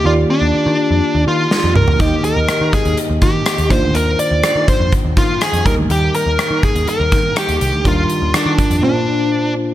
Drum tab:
HH |----------------|x-x-x-xxx-x-xxx-|x-x-x-x-x-x-xxx-|x-x-x-xxx-x-xxx-|
SD |------------o---|----r-------r---|----r-------r---|----r-------r---|
T2 |--------------o-|----------------|----------------|----------------|
FT |---------------o|----------------|----------------|----------------|
BD |----------------|o-----o---o---o-|------o-o-o---o-|------o---o-----|

HH |x-x-x-xx--------|
SD |----r-----------|
T2 |----------------|
FT |----------------|
BD |o-----o---------|